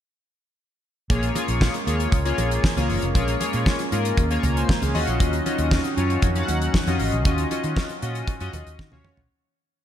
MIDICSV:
0, 0, Header, 1, 5, 480
1, 0, Start_track
1, 0, Key_signature, -5, "minor"
1, 0, Tempo, 512821
1, 1030, Time_signature, 4, 2, 24, 8
1, 9217, End_track
2, 0, Start_track
2, 0, Title_t, "Analog polysynth"
2, 0, Program_c, 0, 90
2, 1027, Note_on_c, 0, 58, 88
2, 1027, Note_on_c, 0, 65, 72
2, 1030, Note_on_c, 0, 68, 87
2, 1034, Note_on_c, 0, 73, 97
2, 1208, Note_off_c, 0, 58, 0
2, 1208, Note_off_c, 0, 65, 0
2, 1210, Note_off_c, 0, 68, 0
2, 1212, Note_off_c, 0, 73, 0
2, 1263, Note_on_c, 0, 58, 74
2, 1266, Note_on_c, 0, 65, 78
2, 1268, Note_on_c, 0, 68, 80
2, 1271, Note_on_c, 0, 73, 91
2, 1626, Note_off_c, 0, 58, 0
2, 1628, Note_off_c, 0, 65, 0
2, 1629, Note_off_c, 0, 68, 0
2, 1630, Note_off_c, 0, 73, 0
2, 1745, Note_on_c, 0, 58, 78
2, 1747, Note_on_c, 0, 65, 76
2, 1751, Note_on_c, 0, 68, 71
2, 1753, Note_on_c, 0, 73, 90
2, 2018, Note_off_c, 0, 58, 0
2, 2018, Note_off_c, 0, 65, 0
2, 2020, Note_off_c, 0, 68, 0
2, 2021, Note_off_c, 0, 73, 0
2, 2107, Note_on_c, 0, 58, 91
2, 2110, Note_on_c, 0, 65, 88
2, 2112, Note_on_c, 0, 68, 84
2, 2116, Note_on_c, 0, 73, 95
2, 2468, Note_off_c, 0, 58, 0
2, 2470, Note_off_c, 0, 65, 0
2, 2471, Note_off_c, 0, 68, 0
2, 2473, Note_off_c, 0, 73, 0
2, 2588, Note_on_c, 0, 58, 86
2, 2590, Note_on_c, 0, 65, 71
2, 2592, Note_on_c, 0, 68, 75
2, 2596, Note_on_c, 0, 73, 88
2, 2859, Note_off_c, 0, 58, 0
2, 2860, Note_off_c, 0, 65, 0
2, 2861, Note_off_c, 0, 68, 0
2, 2863, Note_off_c, 0, 73, 0
2, 2944, Note_on_c, 0, 58, 92
2, 2945, Note_on_c, 0, 65, 87
2, 2949, Note_on_c, 0, 68, 82
2, 2951, Note_on_c, 0, 73, 105
2, 3127, Note_off_c, 0, 58, 0
2, 3127, Note_off_c, 0, 65, 0
2, 3129, Note_off_c, 0, 68, 0
2, 3130, Note_off_c, 0, 73, 0
2, 3186, Note_on_c, 0, 58, 84
2, 3190, Note_on_c, 0, 65, 80
2, 3193, Note_on_c, 0, 68, 76
2, 3195, Note_on_c, 0, 73, 93
2, 3548, Note_off_c, 0, 58, 0
2, 3550, Note_off_c, 0, 65, 0
2, 3551, Note_off_c, 0, 68, 0
2, 3552, Note_off_c, 0, 73, 0
2, 3669, Note_on_c, 0, 58, 75
2, 3671, Note_on_c, 0, 65, 74
2, 3674, Note_on_c, 0, 68, 77
2, 3675, Note_on_c, 0, 70, 85
2, 3939, Note_off_c, 0, 58, 0
2, 3940, Note_off_c, 0, 65, 0
2, 3942, Note_off_c, 0, 68, 0
2, 3943, Note_off_c, 0, 70, 0
2, 4028, Note_on_c, 0, 58, 89
2, 4032, Note_on_c, 0, 65, 83
2, 4033, Note_on_c, 0, 68, 82
2, 4035, Note_on_c, 0, 73, 97
2, 4150, Note_off_c, 0, 73, 0
2, 4151, Note_off_c, 0, 68, 0
2, 4154, Note_on_c, 0, 82, 74
2, 4161, Note_on_c, 0, 73, 61
2, 4266, Note_off_c, 0, 82, 0
2, 4269, Note_off_c, 0, 73, 0
2, 4275, Note_on_c, 0, 80, 69
2, 4283, Note_on_c, 0, 72, 65
2, 4389, Note_off_c, 0, 58, 0
2, 4391, Note_off_c, 0, 65, 0
2, 4500, Note_off_c, 0, 80, 0
2, 4504, Note_off_c, 0, 72, 0
2, 4514, Note_on_c, 0, 77, 63
2, 4521, Note_on_c, 0, 68, 52
2, 4624, Note_on_c, 0, 61, 92
2, 4627, Note_on_c, 0, 65, 76
2, 4628, Note_on_c, 0, 66, 93
2, 4630, Note_on_c, 0, 75, 101
2, 4740, Note_off_c, 0, 77, 0
2, 4743, Note_off_c, 0, 68, 0
2, 5010, Note_off_c, 0, 61, 0
2, 5012, Note_off_c, 0, 65, 0
2, 5013, Note_off_c, 0, 66, 0
2, 5014, Note_off_c, 0, 75, 0
2, 5106, Note_on_c, 0, 61, 77
2, 5109, Note_on_c, 0, 65, 74
2, 5110, Note_on_c, 0, 66, 76
2, 5114, Note_on_c, 0, 75, 88
2, 5468, Note_off_c, 0, 61, 0
2, 5470, Note_off_c, 0, 65, 0
2, 5470, Note_off_c, 0, 66, 0
2, 5472, Note_off_c, 0, 75, 0
2, 5586, Note_on_c, 0, 61, 77
2, 5590, Note_on_c, 0, 65, 74
2, 5593, Note_on_c, 0, 66, 75
2, 5594, Note_on_c, 0, 73, 84
2, 5858, Note_off_c, 0, 61, 0
2, 5860, Note_off_c, 0, 65, 0
2, 5861, Note_off_c, 0, 66, 0
2, 5862, Note_off_c, 0, 73, 0
2, 5950, Note_on_c, 0, 61, 84
2, 5952, Note_on_c, 0, 77, 73
2, 5955, Note_on_c, 0, 66, 76
2, 5957, Note_off_c, 0, 77, 0
2, 5957, Note_on_c, 0, 77, 79
2, 6011, Note_off_c, 0, 77, 0
2, 6016, Note_on_c, 0, 78, 95
2, 6310, Note_off_c, 0, 61, 0
2, 6312, Note_off_c, 0, 66, 0
2, 6343, Note_off_c, 0, 78, 0
2, 6433, Note_on_c, 0, 61, 79
2, 6435, Note_on_c, 0, 65, 70
2, 6437, Note_on_c, 0, 66, 75
2, 6438, Note_on_c, 0, 75, 83
2, 6701, Note_off_c, 0, 61, 0
2, 6702, Note_off_c, 0, 65, 0
2, 6703, Note_off_c, 0, 66, 0
2, 6704, Note_off_c, 0, 75, 0
2, 6792, Note_on_c, 0, 61, 92
2, 6794, Note_on_c, 0, 65, 82
2, 6798, Note_on_c, 0, 66, 82
2, 6799, Note_on_c, 0, 75, 92
2, 6971, Note_off_c, 0, 61, 0
2, 6972, Note_off_c, 0, 65, 0
2, 6974, Note_off_c, 0, 66, 0
2, 6974, Note_off_c, 0, 75, 0
2, 7030, Note_on_c, 0, 61, 82
2, 7033, Note_on_c, 0, 65, 71
2, 7036, Note_on_c, 0, 66, 72
2, 7037, Note_on_c, 0, 75, 87
2, 7390, Note_off_c, 0, 61, 0
2, 7391, Note_off_c, 0, 65, 0
2, 7393, Note_off_c, 0, 66, 0
2, 7394, Note_off_c, 0, 75, 0
2, 7508, Note_on_c, 0, 61, 83
2, 7510, Note_on_c, 0, 65, 77
2, 7513, Note_on_c, 0, 66, 72
2, 7517, Note_on_c, 0, 75, 92
2, 7779, Note_off_c, 0, 61, 0
2, 7780, Note_off_c, 0, 65, 0
2, 7781, Note_off_c, 0, 66, 0
2, 7783, Note_off_c, 0, 75, 0
2, 7865, Note_on_c, 0, 61, 81
2, 7868, Note_on_c, 0, 65, 73
2, 7872, Note_on_c, 0, 66, 88
2, 7873, Note_on_c, 0, 75, 101
2, 8228, Note_off_c, 0, 61, 0
2, 8229, Note_off_c, 0, 65, 0
2, 8231, Note_off_c, 0, 66, 0
2, 8232, Note_off_c, 0, 75, 0
2, 8349, Note_on_c, 0, 61, 84
2, 8351, Note_on_c, 0, 65, 72
2, 8354, Note_on_c, 0, 66, 72
2, 8356, Note_on_c, 0, 73, 89
2, 8619, Note_off_c, 0, 61, 0
2, 8620, Note_off_c, 0, 65, 0
2, 8622, Note_off_c, 0, 66, 0
2, 8623, Note_off_c, 0, 73, 0
2, 9217, End_track
3, 0, Start_track
3, 0, Title_t, "Analog synth pad"
3, 0, Program_c, 1, 89
3, 1028, Note_on_c, 1, 56, 88
3, 1028, Note_on_c, 1, 58, 79
3, 1031, Note_on_c, 1, 61, 102
3, 4592, Note_off_c, 1, 58, 0
3, 4593, Note_off_c, 1, 56, 0
3, 4627, Note_on_c, 1, 51, 73
3, 4627, Note_on_c, 1, 63, 70
3, 4630, Note_on_c, 1, 54, 88
3, 8671, Note_off_c, 1, 51, 0
3, 8671, Note_off_c, 1, 63, 0
3, 8672, Note_off_c, 1, 54, 0
3, 8673, Note_off_c, 1, 61, 0
3, 9217, End_track
4, 0, Start_track
4, 0, Title_t, "Fingered electric bass"
4, 0, Program_c, 2, 33
4, 1030, Note_on_c, 2, 34, 89
4, 1205, Note_off_c, 2, 34, 0
4, 1389, Note_on_c, 2, 34, 94
4, 1564, Note_off_c, 2, 34, 0
4, 1750, Note_on_c, 2, 39, 81
4, 1924, Note_off_c, 2, 39, 0
4, 1987, Note_on_c, 2, 37, 103
4, 2163, Note_off_c, 2, 37, 0
4, 2229, Note_on_c, 2, 34, 89
4, 2404, Note_off_c, 2, 34, 0
4, 2590, Note_on_c, 2, 37, 80
4, 2677, Note_off_c, 2, 37, 0
4, 2710, Note_on_c, 2, 30, 80
4, 2797, Note_off_c, 2, 30, 0
4, 2832, Note_on_c, 2, 29, 86
4, 2918, Note_off_c, 2, 29, 0
4, 2950, Note_on_c, 2, 34, 90
4, 3125, Note_off_c, 2, 34, 0
4, 3312, Note_on_c, 2, 46, 88
4, 3399, Note_off_c, 2, 46, 0
4, 3671, Note_on_c, 2, 44, 93
4, 3845, Note_off_c, 2, 44, 0
4, 3908, Note_on_c, 2, 39, 102
4, 4083, Note_off_c, 2, 39, 0
4, 4151, Note_on_c, 2, 37, 95
4, 4325, Note_off_c, 2, 37, 0
4, 4512, Note_on_c, 2, 37, 88
4, 4599, Note_off_c, 2, 37, 0
4, 4630, Note_on_c, 2, 39, 85
4, 4717, Note_off_c, 2, 39, 0
4, 4749, Note_on_c, 2, 34, 88
4, 4836, Note_off_c, 2, 34, 0
4, 4870, Note_on_c, 2, 39, 89
4, 5045, Note_off_c, 2, 39, 0
4, 5229, Note_on_c, 2, 39, 98
4, 5404, Note_off_c, 2, 39, 0
4, 5590, Note_on_c, 2, 42, 93
4, 5764, Note_off_c, 2, 42, 0
4, 5828, Note_on_c, 2, 41, 99
4, 6003, Note_off_c, 2, 41, 0
4, 6068, Note_on_c, 2, 39, 100
4, 6244, Note_off_c, 2, 39, 0
4, 6427, Note_on_c, 2, 41, 86
4, 6515, Note_off_c, 2, 41, 0
4, 6550, Note_on_c, 2, 32, 84
4, 6637, Note_off_c, 2, 32, 0
4, 6669, Note_on_c, 2, 34, 89
4, 6789, Note_off_c, 2, 34, 0
4, 6789, Note_on_c, 2, 39, 95
4, 6964, Note_off_c, 2, 39, 0
4, 7151, Note_on_c, 2, 51, 96
4, 7238, Note_off_c, 2, 51, 0
4, 7511, Note_on_c, 2, 46, 96
4, 7685, Note_off_c, 2, 46, 0
4, 7868, Note_on_c, 2, 42, 91
4, 7956, Note_off_c, 2, 42, 0
4, 7988, Note_on_c, 2, 39, 91
4, 8076, Note_off_c, 2, 39, 0
4, 8110, Note_on_c, 2, 39, 88
4, 8197, Note_off_c, 2, 39, 0
4, 8229, Note_on_c, 2, 51, 105
4, 8317, Note_off_c, 2, 51, 0
4, 8350, Note_on_c, 2, 39, 82
4, 8437, Note_off_c, 2, 39, 0
4, 8586, Note_on_c, 2, 34, 91
4, 8675, Note_off_c, 2, 34, 0
4, 9217, End_track
5, 0, Start_track
5, 0, Title_t, "Drums"
5, 1030, Note_on_c, 9, 36, 120
5, 1031, Note_on_c, 9, 42, 80
5, 1123, Note_off_c, 9, 36, 0
5, 1125, Note_off_c, 9, 42, 0
5, 1148, Note_on_c, 9, 42, 53
5, 1241, Note_off_c, 9, 42, 0
5, 1268, Note_on_c, 9, 62, 54
5, 1271, Note_on_c, 9, 42, 80
5, 1361, Note_off_c, 9, 62, 0
5, 1364, Note_off_c, 9, 42, 0
5, 1386, Note_on_c, 9, 42, 48
5, 1480, Note_off_c, 9, 42, 0
5, 1508, Note_on_c, 9, 36, 94
5, 1515, Note_on_c, 9, 38, 101
5, 1516, Note_on_c, 9, 63, 74
5, 1602, Note_off_c, 9, 36, 0
5, 1608, Note_off_c, 9, 38, 0
5, 1610, Note_off_c, 9, 63, 0
5, 1629, Note_on_c, 9, 42, 47
5, 1722, Note_off_c, 9, 42, 0
5, 1753, Note_on_c, 9, 42, 62
5, 1847, Note_off_c, 9, 42, 0
5, 1871, Note_on_c, 9, 42, 51
5, 1965, Note_off_c, 9, 42, 0
5, 1986, Note_on_c, 9, 42, 90
5, 1987, Note_on_c, 9, 36, 124
5, 2080, Note_off_c, 9, 42, 0
5, 2081, Note_off_c, 9, 36, 0
5, 2109, Note_on_c, 9, 42, 56
5, 2203, Note_off_c, 9, 42, 0
5, 2228, Note_on_c, 9, 42, 60
5, 2229, Note_on_c, 9, 62, 58
5, 2321, Note_off_c, 9, 42, 0
5, 2322, Note_off_c, 9, 62, 0
5, 2353, Note_on_c, 9, 42, 55
5, 2446, Note_off_c, 9, 42, 0
5, 2470, Note_on_c, 9, 36, 114
5, 2471, Note_on_c, 9, 63, 71
5, 2476, Note_on_c, 9, 38, 100
5, 2563, Note_off_c, 9, 36, 0
5, 2565, Note_off_c, 9, 63, 0
5, 2570, Note_off_c, 9, 38, 0
5, 2588, Note_on_c, 9, 63, 69
5, 2596, Note_on_c, 9, 42, 50
5, 2682, Note_off_c, 9, 63, 0
5, 2689, Note_off_c, 9, 42, 0
5, 2709, Note_on_c, 9, 63, 52
5, 2710, Note_on_c, 9, 46, 75
5, 2803, Note_off_c, 9, 63, 0
5, 2804, Note_off_c, 9, 46, 0
5, 2828, Note_on_c, 9, 42, 43
5, 2922, Note_off_c, 9, 42, 0
5, 2949, Note_on_c, 9, 42, 91
5, 2950, Note_on_c, 9, 36, 107
5, 2954, Note_on_c, 9, 62, 37
5, 3043, Note_off_c, 9, 36, 0
5, 3043, Note_off_c, 9, 42, 0
5, 3047, Note_off_c, 9, 62, 0
5, 3067, Note_on_c, 9, 42, 52
5, 3161, Note_off_c, 9, 42, 0
5, 3188, Note_on_c, 9, 42, 81
5, 3190, Note_on_c, 9, 62, 61
5, 3282, Note_off_c, 9, 42, 0
5, 3284, Note_off_c, 9, 62, 0
5, 3304, Note_on_c, 9, 42, 47
5, 3398, Note_off_c, 9, 42, 0
5, 3428, Note_on_c, 9, 36, 101
5, 3435, Note_on_c, 9, 38, 93
5, 3436, Note_on_c, 9, 63, 68
5, 3521, Note_off_c, 9, 36, 0
5, 3528, Note_off_c, 9, 38, 0
5, 3529, Note_off_c, 9, 63, 0
5, 3547, Note_on_c, 9, 42, 46
5, 3640, Note_off_c, 9, 42, 0
5, 3671, Note_on_c, 9, 42, 61
5, 3764, Note_off_c, 9, 42, 0
5, 3791, Note_on_c, 9, 42, 51
5, 3884, Note_off_c, 9, 42, 0
5, 3907, Note_on_c, 9, 42, 80
5, 3908, Note_on_c, 9, 36, 112
5, 4001, Note_off_c, 9, 36, 0
5, 4001, Note_off_c, 9, 42, 0
5, 4030, Note_on_c, 9, 42, 52
5, 4124, Note_off_c, 9, 42, 0
5, 4150, Note_on_c, 9, 62, 56
5, 4150, Note_on_c, 9, 64, 72
5, 4152, Note_on_c, 9, 42, 63
5, 4243, Note_off_c, 9, 62, 0
5, 4243, Note_off_c, 9, 64, 0
5, 4246, Note_off_c, 9, 42, 0
5, 4276, Note_on_c, 9, 42, 54
5, 4369, Note_off_c, 9, 42, 0
5, 4391, Note_on_c, 9, 36, 114
5, 4393, Note_on_c, 9, 63, 75
5, 4399, Note_on_c, 9, 38, 99
5, 4484, Note_off_c, 9, 36, 0
5, 4487, Note_off_c, 9, 63, 0
5, 4492, Note_off_c, 9, 38, 0
5, 4511, Note_on_c, 9, 63, 71
5, 4516, Note_on_c, 9, 42, 54
5, 4605, Note_off_c, 9, 63, 0
5, 4610, Note_off_c, 9, 42, 0
5, 4630, Note_on_c, 9, 46, 73
5, 4630, Note_on_c, 9, 63, 55
5, 4723, Note_off_c, 9, 46, 0
5, 4724, Note_off_c, 9, 63, 0
5, 4749, Note_on_c, 9, 42, 43
5, 4842, Note_off_c, 9, 42, 0
5, 4870, Note_on_c, 9, 36, 110
5, 4870, Note_on_c, 9, 42, 95
5, 4875, Note_on_c, 9, 62, 37
5, 4964, Note_off_c, 9, 36, 0
5, 4964, Note_off_c, 9, 42, 0
5, 4968, Note_off_c, 9, 62, 0
5, 4988, Note_on_c, 9, 42, 53
5, 5081, Note_off_c, 9, 42, 0
5, 5110, Note_on_c, 9, 42, 74
5, 5113, Note_on_c, 9, 62, 56
5, 5204, Note_off_c, 9, 42, 0
5, 5206, Note_off_c, 9, 62, 0
5, 5227, Note_on_c, 9, 42, 48
5, 5320, Note_off_c, 9, 42, 0
5, 5348, Note_on_c, 9, 36, 110
5, 5354, Note_on_c, 9, 38, 101
5, 5357, Note_on_c, 9, 63, 71
5, 5442, Note_off_c, 9, 36, 0
5, 5448, Note_off_c, 9, 38, 0
5, 5451, Note_off_c, 9, 63, 0
5, 5467, Note_on_c, 9, 42, 51
5, 5560, Note_off_c, 9, 42, 0
5, 5593, Note_on_c, 9, 42, 64
5, 5686, Note_off_c, 9, 42, 0
5, 5710, Note_on_c, 9, 42, 50
5, 5803, Note_off_c, 9, 42, 0
5, 5825, Note_on_c, 9, 42, 97
5, 5827, Note_on_c, 9, 36, 103
5, 5918, Note_off_c, 9, 42, 0
5, 5920, Note_off_c, 9, 36, 0
5, 5948, Note_on_c, 9, 42, 49
5, 6041, Note_off_c, 9, 42, 0
5, 6068, Note_on_c, 9, 42, 62
5, 6072, Note_on_c, 9, 62, 54
5, 6161, Note_off_c, 9, 42, 0
5, 6166, Note_off_c, 9, 62, 0
5, 6191, Note_on_c, 9, 42, 53
5, 6285, Note_off_c, 9, 42, 0
5, 6309, Note_on_c, 9, 36, 97
5, 6314, Note_on_c, 9, 38, 105
5, 6314, Note_on_c, 9, 63, 71
5, 6403, Note_off_c, 9, 36, 0
5, 6408, Note_off_c, 9, 38, 0
5, 6408, Note_off_c, 9, 63, 0
5, 6431, Note_on_c, 9, 63, 67
5, 6432, Note_on_c, 9, 42, 49
5, 6524, Note_off_c, 9, 63, 0
5, 6526, Note_off_c, 9, 42, 0
5, 6547, Note_on_c, 9, 46, 66
5, 6548, Note_on_c, 9, 63, 55
5, 6641, Note_off_c, 9, 46, 0
5, 6641, Note_off_c, 9, 63, 0
5, 6667, Note_on_c, 9, 42, 39
5, 6760, Note_off_c, 9, 42, 0
5, 6787, Note_on_c, 9, 42, 80
5, 6789, Note_on_c, 9, 36, 120
5, 6792, Note_on_c, 9, 62, 35
5, 6881, Note_off_c, 9, 42, 0
5, 6882, Note_off_c, 9, 36, 0
5, 6886, Note_off_c, 9, 62, 0
5, 6906, Note_on_c, 9, 42, 53
5, 7000, Note_off_c, 9, 42, 0
5, 7028, Note_on_c, 9, 42, 74
5, 7031, Note_on_c, 9, 62, 53
5, 7122, Note_off_c, 9, 42, 0
5, 7125, Note_off_c, 9, 62, 0
5, 7146, Note_on_c, 9, 42, 49
5, 7240, Note_off_c, 9, 42, 0
5, 7268, Note_on_c, 9, 36, 92
5, 7274, Note_on_c, 9, 63, 70
5, 7275, Note_on_c, 9, 38, 92
5, 7362, Note_off_c, 9, 36, 0
5, 7368, Note_off_c, 9, 63, 0
5, 7369, Note_off_c, 9, 38, 0
5, 7386, Note_on_c, 9, 42, 48
5, 7480, Note_off_c, 9, 42, 0
5, 7510, Note_on_c, 9, 42, 62
5, 7603, Note_off_c, 9, 42, 0
5, 7630, Note_on_c, 9, 42, 53
5, 7723, Note_off_c, 9, 42, 0
5, 7745, Note_on_c, 9, 42, 93
5, 7746, Note_on_c, 9, 36, 118
5, 7838, Note_off_c, 9, 42, 0
5, 7839, Note_off_c, 9, 36, 0
5, 7866, Note_on_c, 9, 42, 53
5, 7959, Note_off_c, 9, 42, 0
5, 7987, Note_on_c, 9, 42, 61
5, 7988, Note_on_c, 9, 62, 51
5, 7988, Note_on_c, 9, 64, 70
5, 8080, Note_off_c, 9, 42, 0
5, 8082, Note_off_c, 9, 62, 0
5, 8082, Note_off_c, 9, 64, 0
5, 8112, Note_on_c, 9, 42, 56
5, 8205, Note_off_c, 9, 42, 0
5, 8228, Note_on_c, 9, 36, 102
5, 8229, Note_on_c, 9, 63, 71
5, 8235, Note_on_c, 9, 38, 46
5, 8322, Note_off_c, 9, 36, 0
5, 8323, Note_off_c, 9, 63, 0
5, 8329, Note_off_c, 9, 38, 0
5, 8347, Note_on_c, 9, 48, 62
5, 8347, Note_on_c, 9, 63, 71
5, 8440, Note_off_c, 9, 48, 0
5, 8440, Note_off_c, 9, 63, 0
5, 8466, Note_on_c, 9, 45, 88
5, 8466, Note_on_c, 9, 63, 57
5, 8560, Note_off_c, 9, 45, 0
5, 8560, Note_off_c, 9, 63, 0
5, 8586, Note_on_c, 9, 43, 89
5, 8680, Note_off_c, 9, 43, 0
5, 9217, End_track
0, 0, End_of_file